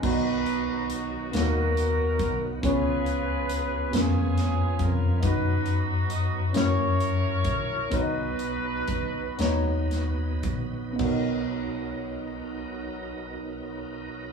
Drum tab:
CC |x-----|------|------|------|
HH |-xxxxx|xxxxxx|xxxxxx|xxxxxx|
SD |---o--|---oo-|---o--|---oo-|
BD |o----o|o----o|o----o|o-o--o|

CC |x-----|
HH |------|
SD |------|
BD |o-----|